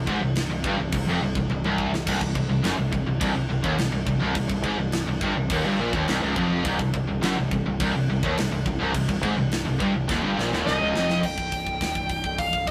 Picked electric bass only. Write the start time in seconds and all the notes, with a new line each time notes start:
0.07 G#1
0.20 C1
0.49 C1
0.64 G1
0.78 C1
0.92 C1
1.07 F1
1.22 C1
1.35 C1
1.50 C1
1.64 C1
1.92 C1
2.07 C1
2.21 C1
2.35 C1
2.49 C1
2.64 F#1
2.78 C1
2.92 C1
3.07 C1
3.20 C1
3.34 C1
3.49 C1
3.64 D#1
3.78 C1
3.92 C1
4.06 C1
4.20 C1
4.35 C1
4.49 C1
4.64 G#1
4.78 C1
5.06 C1
5.21 G1
5.35 C1
5.50 D#1
5.64 G1
5.79 A#1
5.93 D#1
6.08 C1
6.22 C#1
6.36 F1
6.64 C1
6.79 C1
6.94 C1
7.09 C1
7.23 F#1
7.38 C1
7.51 C1
7.66 C1
7.80 C1
7.94 C1
8.08 C1
8.23 D#1
8.37 C1
8.51 C1
8.65 C1
8.80 C1
8.94 C1
9.08 C1
9.23 G#1
9.37 C1
9.67 C1
9.80 G1
9.94 C1
10.09 D#1
10.23 G1
10.38 A#1
10.53 D#1
10.66 C1
10.81 C#1
10.96 F1
11.23 C1
11.38 C1
11.52 C1
11.67 C1
11.81 D#1
11.95 C1
12.24 C1
12.38 C1
12.53 C1
12.67 C1